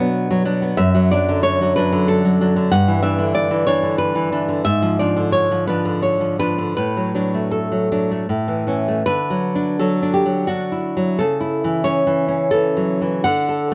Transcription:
Already playing: B2 F#3 D4
0.00 B3
0.31 F#3
0.45 F#3 D4
0.62 B3
0.77 F#2 E5
0.95 F#3
1.11 F#3 D4 D5
1.29 D3
1.43 C#5
1.62 F#3
1.76 F#3 D4 B4
1.92 D3
2.08 A4
2.25 F#3
2.41 F#3 D4
2.56 D3
2.71 G2 F#5
2.88 E3
3.03 E3 D4 E5
3.19 D3
3.35 D5
3.51 E3
3.67 E3 D4 C#5
3.83 D3
3.98 B4
4.15 E3
4.32 E3 D4
4.49 D3
4.65 G#2 E5
4.82 F3
4.99 F3 D4 D5
5.17 D3
5.32 C#5
5.51 F3
5.67 F3 D4 B4
5.85 D3
6.02 C#5
6.20 F3
6.39 F3 D4 B4
6.58 D3
6.77 A2 B4
6.97 F#3
7.15 F#3 D4
7.34 A3
7.51 A4
7.72 F#3
7.92 F#3 D4
8.11 A3
8.29 A2
8.48 E3
8.67 E3 C#4
8.88 A3
9.06 D3 B4
9.30 F#3
9.55 D4
9.79 F#3 A4
10.02 D4
10.14 G4
10.26 F#3
10.47 D4 F#4
10.72 E4
10.97 F#3
11.19 C#3 A4
11.41 E4
11.64 E3
11.84 C#4 C#5
12.07 E3
12.28 C#4
12.51 E3 A4
12.77 F#3
13.01 E3
13.24 D3 F#5
13.49 A4

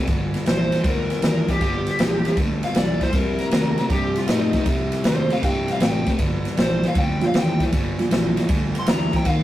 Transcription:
0.07 G1 G2 D3, kick, snare, ride
0.34 snare, ride
0.46 A#1 G2 E3 C5, snare, ride
0.72 G2 E3, snare, ride
0.84 D2 G2 D3, kick, snare, ride
0.88 A#4
1.10 snare, ride
1.22 D#2 G2 E3 A#4, snare, ride
1.48 G2 E3 G4, kick, snare, ride
1.61 G1 G2 D3 G4, kick, snare, ride
1.87 snare, ride
1.99 A#1 G2 E3, snare, ride
2.25 G2 E3, snare, ride
2.37 D2 G2 D3, kick, snare, ride
2.63 F5, snare, ride
2.75 B1 G2 E3 D5, snare, ride
3.01 G2 E3 C5, kick, snare, ride
3.13 C2 C3 G3 A#4, kick, snare, ride
3.38 snare, ride
3.51 D#2 C3 A3, snare, ride
3.77 C3 A3, snare, ride
3.90 G2 C3 G3 G4, kick, snare, ride
4.16 F4, snare, ride
4.28 A2 C3 A3 D#4, snare, ride
4.53 C3 A3, kick, snare, ride
4.66 C2 C3 G3, kick, snare, ride
4.92 snare, ride
5.04 D#2 C3 A3 C5, snare, ride
5.30 C3 A3 F5, snare, ride
5.43 G2 C3 G3 G5, kick, snare, ride
5.68 F5, snare, ride
5.80 A1 C3 A3 G5, snare, ride
6.06 C3 A3, kick, snare, ride
6.19 G1 G2 D3, kick, snare, ride
6.45 snare, ride
6.57 A#1 G2 E3 C5, snare, ride
6.83 G2 E3, snare, ride
6.88 F5
6.95 D2 G2 D3, kick, snare, ride
6.99 G5
7.20 F3 G3 A#3 D4 F4, snare, ride
7.27 F5
7.34 D#2 G2 E3, snare, ride
7.38 G5
7.60 G2 E3, kick, snare, ride
7.72 G1 G2 D3, kick, snare, ride
7.97 F3 G3 A#3 D4 F4, snare, ride
8.11 A#1 G2 E3, snare, ride
8.36 G2 E3, snare, ride
8.49 D2 G2 D3, kick, snare, ride
8.75 snare, ride
8.79 C6
8.86 D2 G2 E3 A#5, snare, ride
9.12 G2 E3, kick, snare, ride
9.16 G5
9.25 D#2 D#3 A#3 F5, kick, snare, ride

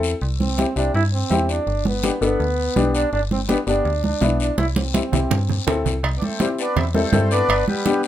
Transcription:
Already playing: E2 C4 E4 A4
0.03 short guiro
0.21 C2, high conga, long guiro
0.40 C4, high conga
0.58 C4 E4 G4, high conga, short guiro
0.76 C2 C4 D4 E4 G4, short guiro
0.94 G2 E4, high conga, long guiro
1.13 C4
1.30 E2 C4 E4 G4, high conga, short guiro
1.49 D4, short guiro
1.67 G1, high conga, long guiro
1.85 B3, high conga
2.03 B3 D4 G4, high conga, short guiro
2.21 G1 B3 D4 A4, short guiro
2.40 D2, high conga, long guiro
2.76 B1 B3 D4 G4, high conga, short guiro
2.95 D4, short guiro
3.13 G1 D4, high conga, long guiro
3.31 C4, high conga
3.48 B3 D4 G4, high conga, short guiro
3.66 G1 B3 D4 G4, short guiro
3.85 D2, high conga, long guiro
4.04 D4, high conga
4.21 B1 B3 D4 E4, high conga, short guiro
4.40 D4, short guiro
4.58 C2 E4, high conga, long guiro
4.76 C4, high conga
4.94 C4 E4 G4, high conga, short guiro
5.12 C2 C4 E4 G4, low conga, short guiro
5.31 G2, low conga, long guiro
5.49 low conga
5.67 D2 C4 E4 A4, low conga, short guiro
5.85 C2, low conga, short guiro
6.03 C2, cowbell, high conga, long guiro
6.17 B3 D4
6.22 A3 C4, high conga
6.40 G3 C4 E4 G4, high conga, short guiro
6.59 B3 D4, short guiro
6.76 E2 C4 E4, cowbell, high conga, low conga, long guiro
6.94 G3 A3 C4 E4 A4, high conga
7.13 G2 C4 E4 A4, high conga, low conga, short guiro
7.31 B3 D4, short guiro
7.49 G1, cowbell, high conga, long guiro
7.68 G3 B3, high conga
7.85 B3 D4 G4, high conga, short guiro
8.03 G3 B3, short guiro

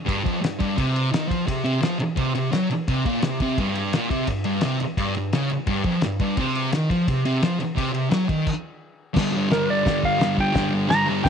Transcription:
0.06 G2, kick, ride
0.25 F2, kick, ride
0.42 G2, snare, ride
0.60 G2, kick, ride
0.77 C3, kick, ride
0.96 ride
1.12 D#3, snare, ride
1.29 F3, kick, ride
1.47 C3, kick, ride
1.64 C3, ride
1.82 F3, snare, ride
1.99 muted distorted electric guitar stroke, ride
2.16 C3, kick, ride
2.35 C3, ride
2.52 F#3, snare, ride
2.70 muted distorted electric guitar stroke, ride
2.88 C3, kick, ride
3.05 A#2, kick, ride
3.22 C3, snare, ride
3.40 C3, kick, ride
3.58 G2, kick, ride
3.75 ride
3.93 A#2, snare, ride
4.10 C3, kick, ride
4.27 G2, kick, ride
4.44 G2, ride
4.61 C3, snare, ride
4.80 muted distorted electric guitar stroke, ride
4.97 G2, kick, ride
5.14 G2, ride
5.33 C#3, snare, ride
5.50 muted distorted electric guitar stroke, ride
5.67 G2, kick, ride
5.84 F2, kick, ride
6.01 G2, snare, ride
6.20 G2, kick, ride
6.37 C3, kick, ride
6.55 ride
6.72 D#3, snare, ride
6.90 F3, kick, ride
7.08 C3, kick, ride
7.25 C3, ride
7.43 F3, snare, ride
7.60 muted distorted electric guitar stroke, ride
7.76 C3, kick, ride
7.93 C3, ride
8.11 F#3, snare, ride
8.29 D#3, kick, ride
8.47 kick, crash
9.14 G2 D3, kick, snare, crash
9.19 G3
9.32 G3
9.36 D3
9.49 G2 D3 A#4, snare, crash
9.54 G3
9.66 G3
9.70 D3 D5
9.84 G2 D3, kick, snare, crash
9.89 G3
10.03 F5, kick
10.18 G2 D3, snare, crash
10.23 G3
10.35 G3, kick
10.40 D3 G5
10.53 G2 D3, kick, snare, crash
10.58 G3
10.70 G3
10.75 D3
10.88 G2 D3 A#5, snare, crash
10.92 G3
11.06 G3
11.11 D3
11.24 G2 G5, kick, snare, crash

